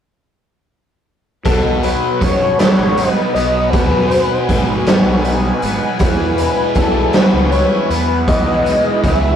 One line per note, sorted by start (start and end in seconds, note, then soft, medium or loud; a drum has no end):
1.45 1.60 B1 medium
1.45 2.20 B2 medium
1.45 5.97 F#3 medium
1.45 5.97 B3 medium
1.45 5.97 D#4 medium
1.45 3.71 F#4 medium
1.45 1.81 A4 medium
1.45 9.36 B4 medium
1.45 kick loud
1.45 closed hi-hat medium
1.64 1.93 B1 medium
1.83 3.73 F#3 medium
1.83 2.23 B4 medium
1.83 closed hi-hat medium
2.21 2.51 F#2 medium
2.21 3.72 B2 medium
2.21 2.58 C#5 medium
2.21 kick medium
2.21 closed hi-hat medium
2.59 3.34 B3 medium
2.59 3.12 C#5 loud
2.59 snare medium
2.59 closed hi-hat medium
2.78 3.07 G#1 medium
2.98 4.87 D#4 medium
2.98 closed hi-hat medium
3.12 3.36 B4 loud
3.34 3.93 B1 medium
3.34 4.88 B3 medium
3.34 3.72 D#5 loud
3.34 closed hi-hat medium
3.70 4.47 B2 medium
3.70 4.85 B4 loud
3.70 kick loud
3.70 closed hi-hat medium
3.75 8.25 G#5 medium
3.93 4.22 F#2 medium
4.10 6.00 F#3 medium
4.10 closed hi-hat medium
4.48 5.05 G#1 medium
4.48 6.00 B2 medium
4.48 kick medium
4.48 closed hi-hat medium
4.86 5.63 B3 medium
4.86 snare loud
4.86 closed hi-hat medium
5.05 5.49 B1 medium
5.25 6.01 D#4 medium
5.25 closed hi-hat medium
5.62 5.77 G#1 medium
5.62 7.15 B3 medium
5.62 closed hi-hat medium
5.99 6.14 E2 loud
5.99 6.75 E3 medium
5.99 9.36 E3 medium
5.99 9.36 B3 medium
5.99 9.36 E4 medium
5.99 kick loud
5.99 closed hi-hat medium
6.19 6.48 E2 medium
6.38 8.66 G#3 medium
6.38 6.73 B4 medium
6.38 closed hi-hat medium
6.75 7.05 B1 medium
6.75 8.28 E3 medium
6.75 7.16 A4 medium
6.75 kick medium
6.75 closed hi-hat medium
7.13 7.90 B3 medium
7.13 7.52 B4 medium
7.13 snare loud
7.13 closed hi-hat medium
7.33 7.62 C#2 medium
7.51 9.36 E4 medium
7.51 7.91 C#5 medium
7.51 closed hi-hat soft
7.89 8.47 E2 medium
7.89 9.36 B3 medium
7.89 8.28 B4 medium
7.89 closed hi-hat medium
8.28 9.04 E3 medium
8.28 9.36 F#4 medium
8.28 9.06 D#5 loud
8.28 kick loud
8.28 closed hi-hat medium
8.47 8.76 B1 medium
8.66 9.36 G#3 medium
8.66 closed hi-hat medium
9.03 9.36 C#2 medium
9.03 9.36 E3 medium
9.03 9.36 E5 loud
9.03 kick medium
9.03 closed hi-hat medium